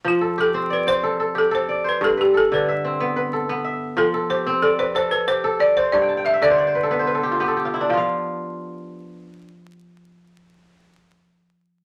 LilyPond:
<<
  \new Staff \with { instrumentName = "Balafon" } { \time 12/8 \key f \lydian \tempo 4. = 122 f'4 a'4 b'8 c''4. a'8 c''4 b'8 | a'8 g'8 a'8 b'1 r8 | a'4 c''4 a'8 c''8 c''8 b'8 c''4 d''8 c''8 | d''4 e''8 d''1 r8 |
f''1.~ | f''1. | }
  \new Staff \with { instrumentName = "Kora" } { \time 12/8 \key f \lydian << { r8 a'8 g'4 d''8 c''4 a'8 g'4 d''8 c''8~ | c''8 b'8 a'4 e''8 c'4 b'8 a'4 e''4~ | e''8 a'8 g'4 d''8 b'4 a'8 g'4 d''8 c''8~ | c''8 r1 r4. |
<f f' f''>1.~ | <f f' f''>1. | } \\ { r1. | r1. | r1. | r16 g''16 a''16 g''16 f''16 e''16 d''16 c''16 d''16 c''16 b'16 a'16 b'16 c''16 b'16 a'16 g'16 f'16 g'16 a'16 g'16 f'16 e'16 d'16~ |
d'16 r1 r4. r16 | r1. | } >> }
  \new Staff \with { instrumentName = "Kora" } { \time 12/8 \key f \lydian f4 r8 c'4 r8 a'4 r8 a'4 r8 | g,4 r8 d4 r8 b4 r8 b4 r8 | f4 r8 c'4 r8 a'4 r8 a'4 r8 | g,4 r8 d4 r8 b4 r8 b4 r8 |
r1. | r1. | }
>>